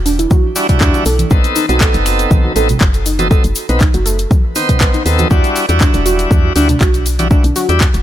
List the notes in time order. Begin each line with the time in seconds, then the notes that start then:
Already playing: E1
0.06 D4, open hi-hat, cabasa
0.19 E4, closed hi-hat, cabasa
0.30 F#4, kick, high conga, cabasa
0.56 G3 D4 E4 F#4, open hi-hat, cabasa
0.69 G3 D4 E4 F#4, kick, closed hi-hat, low conga, cabasa
0.81 E2 D4, kick, clap, cabasa
0.94 E4, closed hi-hat, cabasa
1.05 B1 A4, open hi-hat, cabasa
1.19 closed hi-hat, high conga, cabasa
1.30 B1 B3 C4 D#4 A4, kick, cabasa
1.44 closed hi-hat, cabasa
1.56 D#4, open hi-hat, cabasa
1.69 B1 B3 C4 D#4 F#4 A4, closed hi-hat, cabasa
1.81 A4, kick, clap, cabasa
1.94 F#1, closed hi-hat, cabasa
2.06 finger snap, open hi-hat, cabasa
2.19 closed hi-hat, cabasa
2.31 B1 D#4, kick, high conga, cabasa
2.44 F#4
2.56 A1 B3 C4 D#4 A4, open hi-hat, cabasa
2.69 closed hi-hat, low conga, cabasa
2.81 F#1, finger snap, kick, clap, cabasa
2.94 closed hi-hat, cabasa
3.06 D#4, open hi-hat, cabasa
3.19 B3 C4 D#4 F#4 A4, closed hi-hat, high conga, cabasa
3.31 B3 C4 D#4 A4, kick, cabasa
3.44 F#1, closed hi-hat, cabasa
3.55 open hi-hat, cabasa
3.69 B1 B3 C4 D#4 B4, closed hi-hat, cabasa
3.80 D#4, kick, clap, cabasa
3.94 F#1 F#4, closed hi-hat, cabasa
4.06 A4, open hi-hat, cabasa
4.19 closed hi-hat, cabasa
4.31 kick, high conga, cabasa
4.55 B3 C4 D#4 C5, open hi-hat, cabasa
4.69 B4, kick, closed hi-hat, low conga, cabasa
4.81 B1 B4, kick, clap, high conga, cabasa
4.94 D#4, closed hi-hat, cabasa
5.05 D#2 B3 C4 D#4 A4, open hi-hat, cabasa
5.19 F#4, closed hi-hat, high conga, cabasa
5.30 E2 G3 D4 E4 F#4, kick, cabasa
5.44 closed hi-hat, cabasa
5.56 open hi-hat, cabasa
5.69 E2 G3 D4 E4 F#4, closed hi-hat, cabasa
5.81 D4, kick, clap, cabasa
5.94 E1 D4, closed hi-hat, cabasa
6.06 F#4, open hi-hat, cabasa
6.19 closed hi-hat, cabasa
6.31 E2, kick, high conga, cabasa
6.56 D2 G3 D4 E4 F#4, open hi-hat, cabasa
6.69 D4, closed hi-hat, low conga, cabasa
6.81 B1 F#4, finger snap, kick, clap, cabasa
6.94 closed hi-hat, cabasa
7.06 open hi-hat, cabasa
7.19 G3 D4 E4 F#4, closed hi-hat, high conga, cabasa
7.31 G3 D4 E4 F#4, kick, cabasa
7.44 B1 D4, closed hi-hat, cabasa
7.56 F#4, open hi-hat, cabasa
7.69 E2 G3 D4 E4 G4, closed hi-hat, cabasa
7.81 kick, clap, cabasa
7.94 E1, closed hi-hat, cabasa